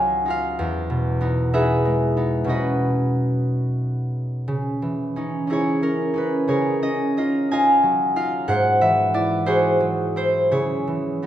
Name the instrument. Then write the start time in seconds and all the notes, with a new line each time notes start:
harp
Already playing: C#2 C#3 F#3 G#3 D#4 F4 G#4 A#4 C#5 D#5 F5 G#5
0.26 D#4 F4
0.30 F5
0.59 E2
0.90 B2
1.21 B3 D#4
1.53 B3 D#4 G#4 B4 E5
1.85 G#3
2.17 B3 D#4
2.44 B2 F#3 C#4 D#4
2.49 F#4 B4 D#5
4.48 C#3
4.82 E3
5.16 C#4 D#4
5.47 C#4 D#4 E4 G#4
5.53 C#5
5.82 C#4 A#4
6.14 C#4 D#4
6.18 B4
6.48 C#3 G#4 A#4 C#5
6.82 C#4 D#5
7.17 D#4 F4 D#5
7.51 D#4 F4 D#5 F5 G#5
7.83 F#3
8.16 D#4 F4 F5
8.48 G#2 C5 F#5
8.81 E3 E5
9.14 E4 D5
9.46 E4 F#4 G#4 C5
9.80 F#3
10.16 E4 C5
10.51 C#3 E4 G#4 C#5
10.87 E3
11.22 B3 D#4